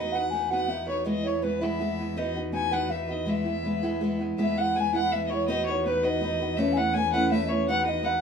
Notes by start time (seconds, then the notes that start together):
Already playing: E2 B3 D#4 F#4 B4 D#5
0.12 F#4 B4 F#5
0.16 D#4
0.29 B3 D#4 G#5
0.34 F#4 B4
0.49 B3 D#4 F#4 B4 F#5
0.68 B3 D#4 F#4 B4 E5
0.87 D#4 F#4 B4 C#5
1.04 E3 G#3 B3 E4 D#5
1.23 G#3 B3 E4 C#5
1.42 E3 G#3 B3 E4 B4
1.60 E3 G#3 B3 E4 E5
1.80 E3 G#3 B3 E4
1.98 G#3 B3 E4
2.16 B3 D#4 F#4 B4 D#5
2.34 D#4 F#4 B4
2.52 B3 D#4 F#4 B4 G#5
2.71 B3 D#4 F#4 B4 F#5
2.89 B3 D#4 F#4 B4 E5
3.08 D#4 F#4 B4 D#5
3.25 E3 G#3 B3 E4 E5
3.44 G#3 B3 E4
3.63 E3 G#3 B3 E4
3.83 E3 G#3 B3 E4
4.01 E3 G#3 B3 E4
4.19 G#3 B3 E4
4.38 E2 E3 G#3 B3 E4 E5
4.56 G#3 B3 E4 F#5
4.60 F#5
4.75 E3 G#3 B3 E4 G#5
4.79 G#5
4.93 E3 G#3 B3 E4 F#5
5.12 E3 G#3 B3 E4 E5
5.26 E4 C#5 D#5
5.32 G#3 B3 C#5
5.48 B3 D#4 F#4 B4 D#5
5.66 F#4 B4 C#5
5.70 D#4 C#5
5.86 B3 D#4 F#4 B4
6.03 B3 D#4 F#4 B4 D#5
6.21 B3 D#4 F#4 B4
6.40 D#4 F#4 B4
6.57 A3 C#4 E4 B4 E5
6.72 B4 G#5
6.77 C#4 E4 F#5
6.93 A3 C#4 E4 B4 G#5
7.12 A3 C#4 E4 B4 F#5
7.31 A3 C#4 E4 B4 E5
7.44 D#5
7.49 C#4 E4 B4 C#5
7.68 B3 D#4 F#4 B4 F#5
7.85 D#4 F#4 B4 D#5
8.03 B3 D#4 F#4 B4 F#5